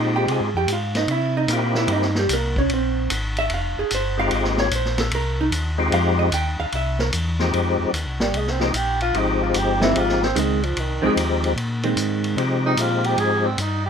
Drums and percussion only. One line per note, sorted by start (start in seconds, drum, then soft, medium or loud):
0.28 ride medium
0.68 hi-hat pedal medium
0.68 ride medium
0.95 snare soft
0.95 ride soft
1.08 ride medium
1.48 hi-hat pedal medium
1.48 ride medium
1.75 snare soft
1.88 ride medium
2.02 snare soft
2.15 snare soft
2.29 hi-hat pedal medium
2.29 ride medium
2.56 kick soft
2.69 ride medium
3.10 hi-hat pedal medium
3.10 ride medium
3.37 ride soft
3.50 ride medium
3.90 hi-hat pedal medium
3.90 ride medium
4.31 ride medium
4.44 snare soft
4.58 snare soft
4.71 hi-hat pedal medium
4.71 ride medium
4.85 snare soft
4.98 snare soft
4.98 ride soft
5.11 ride medium
5.52 hi-hat pedal medium
5.52 ride medium
5.92 ride medium
6.32 hi-hat pedal medium
6.32 ride medium
6.72 ride medium
6.99 snare soft
7.12 hi-hat pedal medium
7.12 ride medium
7.39 snare soft
7.53 ride medium
7.94 hi-hat pedal medium
7.94 ride medium
8.20 snare medium
8.34 ride medium
8.47 snare soft
8.60 snare soft
8.74 hi-hat pedal soft
8.74 ride medium
9.00 ride soft
9.14 ride medium
9.54 hi-hat pedal medium
9.54 ride medium
9.81 snare medium
9.96 ride medium
10.09 snare soft
10.23 snare soft
10.36 hi-hat pedal medium
10.36 ride medium
10.63 ride soft
10.77 ride medium
11.17 hi-hat pedal medium
11.17 ride medium
11.44 ride soft
11.57 ride medium
11.83 ride soft
11.97 hi-hat pedal medium
11.97 ride medium
12.24 ride soft
12.38 ride medium
12.77 hi-hat pedal medium
12.77 ride medium
13.04 ride soft
13.18 ride medium
13.58 hi-hat pedal medium
13.58 ride medium